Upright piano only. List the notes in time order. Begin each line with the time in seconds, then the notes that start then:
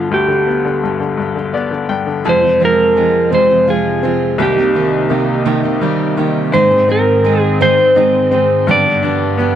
Already playing: G2 B2 D3 B3
0.11 D2
0.28 D3
0.47 B3
0.65 D3
0.83 G2
1.00 D3
1.17 G2
1.36 D3
1.53 B3 D5
1.71 D3
1.89 G2 G5
2.06 D3
2.25 F2
2.60 C4
2.96 G#3
3.31 C4
3.67 F4
4.03 C4
4.38 C2
4.76 D#3
5.10 C3
5.46 D#3
5.81 G3
6.17 D#3
6.52 G#2
6.88 C4
7.24 G#3
7.61 C4
7.96 D#4
8.31 C4
8.67 G2
9.02 D4
9.37 B3